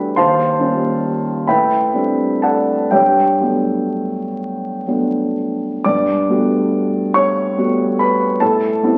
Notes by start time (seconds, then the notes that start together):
Already playing: G3 A3 D4 F#4 B4 E5 G5 B5
0.16 D#2 C5 F5 A5 C6
0.59 G3 A#3 C#4 F4
1.47 A2 B4 E5 G5 B5
1.94 G3 A3 C4 D4
2.42 A4 D5 F#5 A5
2.91 G2 G4 C#5 E5 G5
3.41 F#3 A3 B3 D4
4.87 F#3 A3 B3 D4
5.84 G2 D5 D6
6.29 G3 A3 B3 F#4
7.14 C#5 C#6
7.58 G3 A3 B3 F#4
7.99 B4 B5
8.40 A2 A4 A5
8.83 G3 B3 C4 E4